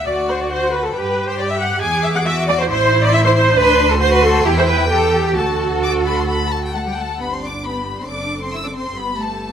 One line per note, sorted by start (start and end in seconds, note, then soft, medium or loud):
0.07 0.91 D2 medium
0.07 0.91 F#4 medium
0.07 0.15 D5 medium
0.07 0.30 D5 medium
0.07 0.92 F#5 medium
0.29 0.34 C5 medium
0.29 0.41 C5 medium
0.41 0.52 D5 medium
0.51 0.73 C5 loud
0.51 0.73 C5 medium
0.73 0.84 B4 medium
0.84 0.95 A4 medium
0.84 0.96 A4 medium
0.95 1.81 G2 medium
0.95 1.81 G4 medium
0.95 1.27 B4 loud
0.95 1.28 B4 medium
0.95 1.78 G5 medium
1.28 1.39 C5 medium
1.39 1.50 D5 loud
1.39 1.50 D5 medium
1.50 1.61 E5 medium
1.50 1.55 E5 medium
1.61 1.82 F#5 loud
1.61 1.83 F#5 medium
1.81 2.68 E2 medium
1.81 2.26 G#4 medium
1.81 2.04 G#5 loud
1.81 2.65 D6 medium
2.04 2.15 E5 medium
2.04 2.09 E5 loud
2.15 2.20 F#5 medium
2.15 2.20 F#5 loud
2.26 2.70 F#4 medium
2.26 2.34 E5 loud
2.26 2.48 E5 loud
2.48 2.52 D5 loud
2.48 2.59 D5 loud
2.59 2.69 C5 loud
2.59 2.64 C5 loud
2.70 3.57 A1 medium
2.70 3.55 E4 loud
2.70 3.02 C5 loud
2.70 3.53 C6 medium
3.03 3.14 D5 loud
3.13 3.18 E5 loud
3.13 3.25 E5 loud
3.25 3.35 C5 loud
3.25 3.29 C5 loud
3.36 3.57 C5 loud
3.36 3.44 C5 loud
3.57 4.41 D2 loud
3.57 4.00 D4 loud
3.57 3.90 B4 loud
3.57 3.89 B4 loud
3.57 3.98 C6 loud
3.90 4.01 A4 medium
3.90 4.01 A4 loud
4.00 4.44 F#4 loud
4.00 4.11 C5 loud
4.00 4.12 C5 loud
4.00 4.44 C6 loud
4.13 4.17 B4 loud
4.13 4.23 B4 loud
4.23 4.45 A4 loud
4.45 5.36 E2 loud
4.45 4.90 E4 loud
4.45 4.49 G4 loud
4.45 4.57 G4 loud
4.45 5.36 G5 loud
4.57 4.68 C5 loud
4.57 4.62 C5 loud
4.68 4.90 B4 loud
4.68 4.91 B4 medium
4.90 5.35 G4 loud
4.90 5.24 A4 loud
5.24 5.36 G4 medium
5.24 5.36 G4 loud
5.36 6.99 D2 medium
5.36 6.74 F#4 loud
5.36 6.74 F#4 medium
5.36 6.74 A4 medium
5.36 5.77 A5 medium
5.84 5.92 D6 loud
6.05 6.17 B5 medium
6.18 6.29 C6 medium
6.28 6.51 B5 medium
6.51 6.63 A5 medium
6.63 6.74 G5 medium
6.74 6.79 A3 medium
6.74 6.85 A4 medium
6.74 7.20 F#5 medium
6.74 6.79 A5 medium
6.85 6.90 G3 soft
6.85 6.97 G4 soft
6.85 6.98 G5 medium
6.97 7.05 A3 medium
6.97 7.19 A4 medium
6.97 7.20 A5 medium
7.19 8.04 G1 soft
7.19 7.31 B3 medium
7.19 7.62 D4 soft
7.19 7.61 G4 soft
7.19 7.31 B4 soft
7.19 7.31 B5 medium
7.31 7.42 C4 soft
7.31 7.42 C5 soft
7.31 7.43 C6 medium
7.42 7.65 D4 soft
7.42 7.51 D5 soft
7.42 7.64 D6 medium
7.64 7.98 B3 soft
7.64 8.08 D4 soft
7.64 8.08 G4 soft
7.64 7.97 B4 soft
7.64 7.97 B5 medium
7.98 8.09 C4 soft
7.98 8.09 C5 soft
7.98 8.09 C6 medium
8.07 8.97 F#1 soft
8.07 8.97 C4 soft
8.07 8.41 D4 medium
8.07 8.95 A4 soft
8.07 8.42 D5 medium
8.07 8.40 D6 medium
8.42 8.53 C4 soft
8.42 8.46 C5 soft
8.42 8.53 C6 medium
8.52 8.57 E4 medium
8.52 8.57 E5 medium
8.52 8.64 E6 medium
8.64 8.68 D4 soft
8.64 8.69 D5 soft
8.64 8.75 D6 soft
8.74 8.97 C4 medium
8.74 8.96 C5 medium
8.74 8.96 C6 medium
8.96 9.52 G1 soft
8.96 9.19 B3 medium
8.96 9.52 B3 soft
8.96 9.52 G4 soft
8.96 9.19 B4 medium
8.96 9.19 B5 medium
9.19 9.52 A3 medium
9.19 9.52 A4 medium
9.19 9.52 A5 medium